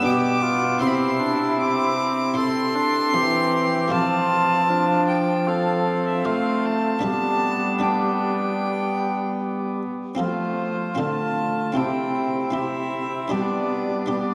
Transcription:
0.00 0.81 B2 medium
0.00 0.83 B3 medium
0.00 0.78 D4 medium
0.00 0.79 B4 medium
0.05 0.78 B2 medium
0.05 0.44 G4 medium
0.05 0.12 D6 loud
0.11 0.20 E6 medium
0.19 0.79 D6 loud
0.43 0.82 F4 medium
0.79 2.82 C3 medium
0.79 2.83 C3 medium
0.79 1.21 C4 medium
0.79 2.32 E4 medium
0.79 2.39 E4 medium
0.79 2.32 C5 medium
0.79 0.89 C6 loud
0.87 0.97 B5 medium
0.95 1.59 C6 loud
1.19 1.60 D4 medium
1.58 2.35 C4 medium
1.58 2.35 D6 loud
2.34 2.76 C4 medium
2.34 3.86 E4 soft
2.34 3.17 A4 medium
2.34 3.87 C5 soft
2.34 3.88 C6 loud
2.75 3.15 D4 medium
3.13 3.87 E3 medium
3.13 3.93 E3 medium
3.13 3.91 C4 medium
3.13 3.93 G4 medium
3.88 6.27 F3 medium
3.88 6.21 F3 medium
3.88 6.24 A3 medium
3.88 4.71 C4 medium
3.88 6.99 F4 medium
3.88 4.69 F4 medium
3.88 6.99 C5 medium
3.92 5.06 A5 loud
4.69 5.49 D4 medium
4.69 5.49 F4 medium
5.08 5.50 G5 medium
5.48 7.04 C4 medium
5.48 6.28 A4 medium
5.48 6.06 F5 medium
6.08 6.26 E5 medium
6.25 7.00 A3 medium
6.25 7.04 A3 medium
6.25 6.77 F4 medium
6.25 6.67 F5 medium
6.65 7.04 A5 medium
6.99 9.82 G3 medium
6.99 7.78 B3 soft
6.99 7.79 D4 medium
6.99 7.79 B4 medium
7.04 9.83 G3 medium
7.04 9.95 B3 medium
7.04 9.82 D4 medium
7.04 7.84 A5 loud
7.79 10.13 B3 soft
7.79 10.13 D4 soft
7.79 10.14 B4 soft
7.79 9.79 G5 medium
10.15 10.93 A3 medium
10.15 10.93 C4 soft
10.15 10.94 F4 soft
10.15 10.95 A4 soft
10.19 10.94 F3 soft
10.19 11.00 F3 medium
10.19 10.94 F4 medium
10.19 11.01 C5 medium
10.95 11.77 D3 medium
10.95 11.72 D3 soft
10.95 11.74 A3 medium
10.95 11.71 C4 soft
10.95 11.73 F4 soft
10.95 11.77 F4 soft
10.95 11.73 A4 soft
11.00 11.78 A5 medium
11.72 13.33 C3 medium
11.72 12.49 C4 soft
11.72 12.52 C4 medium
11.72 12.50 E4 soft
11.72 12.52 E4 medium
11.72 12.51 G4 soft
11.77 13.28 C3 soft
11.77 12.54 G5 medium
12.51 13.28 C4 soft
12.51 13.33 C4 soft
12.51 13.28 E4 soft
12.51 13.34 E4 medium
12.51 13.29 G4 soft
12.51 13.34 E5 medium
13.28 14.34 G3 soft
13.28 14.05 B3 soft
13.28 14.09 B3 medium
13.28 14.06 D4 soft
13.28 14.06 G4 soft
13.32 14.34 G3 medium
13.32 14.09 D4 medium
13.32 14.09 D5 medium
14.06 14.34 B3 soft
14.06 14.34 B3 medium
14.06 14.34 D4 soft
14.06 14.34 G4 soft
14.10 14.34 D5 medium

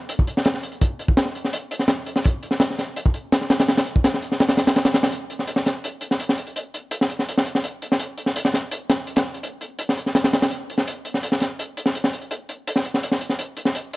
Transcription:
0.09 closed hi-hat medium
0.19 kick loud
0.27 closed hi-hat medium
0.37 snare medium
0.45 snare loud
0.45 closed hi-hat medium
0.54 snare medium
0.63 closed hi-hat medium
0.72 closed hi-hat soft
0.81 kick loud
0.81 closed hi-hat medium
0.99 closed hi-hat medium
1.08 kick medium
1.17 snare loud
1.17 closed hi-hat medium
1.25 snare medium
1.35 closed hi-hat medium
1.44 snare soft
1.53 closed hi-hat medium
1.71 closed hi-hat medium
1.79 snare soft
1.88 snare loud
1.88 closed hi-hat medium
2.06 closed hi-hat medium
2.16 snare medium
2.24 kick loud
2.24 closed hi-hat medium
2.43 closed hi-hat medium
2.51 snare soft
2.60 snare loud
2.60 closed hi-hat medium
2.70 snare medium
2.78 snare soft
2.78 closed hi-hat medium
2.96 closed hi-hat medium
3.06 kick medium
3.14 closed hi-hat medium
3.32 snare loud
3.32 closed hi-hat medium
3.41 snare medium
3.50 snare loud
3.50 closed hi-hat medium
3.60 snare loud
3.60 closed hi-hat medium
3.68 snare medium
3.68 closed hi-hat medium
3.77 snare loud
3.77 closed hi-hat medium
3.86 closed hi-hat medium
3.96 kick medium
4.04 snare loud
4.04 closed hi-hat medium
4.14 snare medium
4.22 closed hi-hat medium
4.32 snare soft
4.40 snare loud
4.40 closed hi-hat medium
4.49 snare loud
4.49 closed hi-hat medium
4.57 snare loud
4.57 closed hi-hat medium
4.67 snare loud
4.67 closed hi-hat medium
4.76 snare loud
4.76 closed hi-hat medium
4.85 snare loud
4.85 closed hi-hat medium
4.94 snare loud
4.94 closed hi-hat medium
5.03 snare loud
5.03 closed hi-hat medium
5.12 closed hi-hat medium
5.30 closed hi-hat medium
5.39 snare soft
5.48 closed hi-hat medium
5.56 snare medium
5.66 snare medium
5.66 closed hi-hat medium
5.84 closed hi-hat medium
6.01 closed hi-hat medium
6.11 snare soft
6.20 closed hi-hat medium
6.29 snare medium
6.38 closed hi-hat medium
6.47 closed hi-hat soft
6.56 closed hi-hat medium
6.74 closed hi-hat medium
6.91 closed hi-hat medium
7.01 snare medium
7.10 closed hi-hat medium
7.19 snare soft
7.29 closed hi-hat medium
7.38 snare medium
7.46 closed hi-hat medium
7.55 snare soft
7.64 closed hi-hat medium
7.82 closed hi-hat medium
7.92 snare medium
7.99 closed hi-hat medium
8.18 closed hi-hat medium
8.26 snare soft
8.36 closed hi-hat medium
8.45 snare medium
8.54 snare soft
8.54 closed hi-hat medium
8.71 closed hi-hat medium
8.90 snare medium
8.90 closed hi-hat medium
9.07 closed hi-hat medium
9.16 snare medium
9.16 closed hi-hat medium
9.34 closed hi-hat medium
9.43 closed hi-hat medium
9.61 closed hi-hat medium
9.79 closed hi-hat medium
9.89 snare soft
9.98 closed hi-hat medium
10.06 snare soft
10.15 snare medium
10.15 closed hi-hat medium
10.24 snare medium
10.24 closed hi-hat medium
10.33 snare loud
10.33 closed hi-hat medium
10.42 snare loud
10.42 closed hi-hat medium
10.50 closed hi-hat medium
10.70 closed hi-hat medium
10.78 snare medium
10.88 closed hi-hat medium
11.05 closed hi-hat medium
11.14 snare soft
11.23 closed hi-hat medium
11.32 snare soft
11.40 snare soft
11.40 closed hi-hat medium
11.59 closed hi-hat medium
11.77 closed hi-hat medium
11.86 snare medium
11.95 closed hi-hat medium
12.04 snare medium
12.13 closed hi-hat medium
12.21 closed hi-hat soft
12.31 closed hi-hat medium
12.49 closed hi-hat medium
12.67 closed hi-hat medium
12.76 snare soft
12.85 closed hi-hat medium
12.94 snare soft
13.03 closed hi-hat medium
13.12 snare soft
13.21 closed hi-hat medium
13.29 snare soft
13.39 closed hi-hat medium
13.57 closed hi-hat medium
13.65 snare soft
13.75 closed hi-hat medium
13.93 closed hi-hat medium

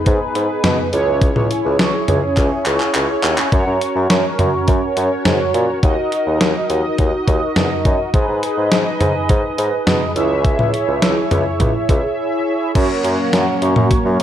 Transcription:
0.00 0.89 B3 medium
0.00 0.89 D#4 medium
0.00 0.89 G#4 medium
0.00 0.89 B4 medium
0.06 0.19 G#2 loud
0.06 kick medium
0.06 closed hi-hat medium
0.35 0.48 G#2 medium
0.35 closed hi-hat medium
0.64 0.77 B2 medium
0.64 snare loud
0.64 closed hi-hat medium
0.64 mid tom medium
0.93 1.31 C#2 loud
0.93 3.48 C#4 medium
0.93 3.48 E4 medium
0.93 3.48 G#4 medium
0.93 3.48 C#5 medium
0.93 closed hi-hat medium
1.22 kick loud
1.22 closed hi-hat medium
1.36 1.49 C#2 medium
1.36 mid tom medium
1.51 closed hi-hat medium
1.65 1.78 C#2 medium
1.79 1.92 C#2 loud
1.79 snare loud
1.79 closed hi-hat medium
2.08 2.21 C#2 loud
2.08 closed hi-hat medium
2.08 mid tom medium
2.37 2.50 C#2 loud
2.37 kick medium
2.37 clap medium
2.37 closed hi-hat medium
2.66 2.79 C#2 medium
2.66 clap medium
2.66 closed hi-hat medium
2.80 clap medium
2.95 3.07 C#2 medium
2.95 clap medium
2.95 closed hi-hat medium
3.23 3.36 D#2 medium
3.23 clap loud
3.23 closed hi-hat medium
3.38 clap medium
3.52 3.65 F#2 loud
3.52 5.79 C#4 medium
3.52 5.79 F#4 medium
3.52 5.79 A#4 medium
3.52 5.79 C#5 medium
3.52 kick loud
3.52 closed hi-hat medium
3.67 3.79 F#2 medium
3.81 closed hi-hat medium
3.96 4.08 F#2 medium
4.10 4.23 F#2 medium
4.10 snare loud
4.10 closed hi-hat medium
4.39 4.52 F#2 medium
4.39 closed hi-hat medium
4.39 mid tom medium
4.68 4.81 F#2 medium
4.68 kick medium
4.68 closed hi-hat medium
4.97 5.09 F#2 medium
4.97 closed hi-hat medium
5.25 5.38 G#2 medium
5.25 snare loud
5.25 closed hi-hat medium
5.25 mid tom medium
5.54 5.67 A#2 medium
5.54 closed hi-hat medium
5.83 5.96 D#2 loud
5.83 8.10 D#4 medium
5.83 8.10 F#4 medium
5.83 8.10 A#4 medium
5.83 8.10 D#5 medium
5.83 kick loud
5.83 closed hi-hat medium
6.12 closed hi-hat medium
6.26 6.39 D#2 medium
6.41 6.53 D#2 loud
6.41 snare loud
6.41 closed hi-hat medium
6.70 6.82 D#2 loud
6.70 closed hi-hat medium
6.98 7.11 D#2 loud
6.98 kick medium
6.98 closed hi-hat medium
7.28 7.40 D#2 loud
7.28 kick medium
7.28 closed hi-hat medium
7.56 7.69 E2 medium
7.56 snare loud
7.56 closed hi-hat medium
7.56 mid tom medium
7.85 7.98 F#2 medium
7.85 kick loud
7.85 closed hi-hat medium
8.14 8.27 G#2 loud
8.14 10.12 D#4 medium
8.14 10.12 G#4 medium
8.14 10.12 B4 medium
8.14 10.12 D#5 medium
8.14 kick loud
8.14 closed hi-hat medium
8.28 8.41 G#2 medium
8.43 closed hi-hat medium
8.57 8.70 G#2 medium
8.72 8.84 G#2 loud
8.72 snare loud
8.72 closed hi-hat medium
9.00 9.13 G#2 loud
9.00 closed hi-hat medium
9.00 mid tom medium
9.29 9.42 G#2 loud
9.29 kick medium
9.29 closed hi-hat medium
9.58 9.71 G#2 medium
9.58 closed hi-hat medium
9.87 10.00 B2 medium
9.87 snare loud
9.87 closed hi-hat medium
9.87 mid tom medium
10.16 10.54 C#2 loud
10.16 12.71 E4 medium
10.16 12.71 G#4 medium
10.16 12.71 C#5 medium
10.16 12.71 E5 medium
10.16 closed hi-hat medium
10.45 kick loud
10.45 closed hi-hat medium
10.59 10.72 C#2 medium
10.59 mid tom medium
10.74 closed hi-hat medium
10.88 11.00 C#2 medium
11.02 11.15 C#2 loud
11.02 snare loud
11.02 closed hi-hat medium
11.31 11.44 C#2 loud
11.31 closed hi-hat medium
11.31 mid tom medium
11.60 11.73 C#2 loud
11.60 kick medium
11.60 closed hi-hat medium
11.60 mid tom medium
11.89 12.02 C#2 medium
11.89 kick medium
11.89 closed hi-hat medium
12.75 12.88 F#2 loud
12.75 14.23 F#3 medium
12.75 14.23 A#3 medium
12.75 14.23 C#4 medium
12.75 14.23 F#4 medium
12.75 14.23 A#4 medium
12.75 14.23 C#5 medium
12.75 kick loud
12.75 closed hi-hat medium
12.75 crash medium
13.04 13.17 F#2 loud
13.04 closed hi-hat medium
13.33 13.46 F#2 loud
13.33 snare loud
13.33 closed hi-hat medium
13.62 13.75 F#2 loud
13.62 closed hi-hat medium
13.76 13.89 F#2 loud
13.76 mid tom medium
13.91 kick medium
13.91 closed hi-hat medium
14.05 14.18 F#2 loud
14.20 14.23 F#2 medium

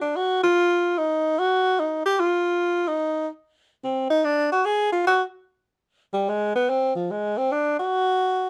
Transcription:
0.01 0.18 D4 medium
0.16 0.42 F#4 medium
0.43 1.00 F4 medium
0.98 1.40 D#4 medium
1.39 1.81 F#4 loud
1.80 2.05 D#4 medium
2.06 2.21 G4 loud
2.20 2.89 F4 medium
2.87 3.27 D#4 medium
3.84 4.08 C4 medium
4.10 4.26 D#4 loud
4.25 4.50 D4 medium
4.52 4.67 F#4 medium
4.65 4.91 G#4 medium
4.92 5.04 F4 medium
5.07 5.22 F#4 medium
6.14 6.30 G3 medium
6.29 6.55 G#3 medium
6.55 6.71 B3 medium
6.70 6.95 C4 medium
6.95 7.13 F3 medium
7.11 7.39 G#3 medium
7.38 7.54 C4 medium
7.52 7.77 D4 medium
7.79 8.50 F#4 medium

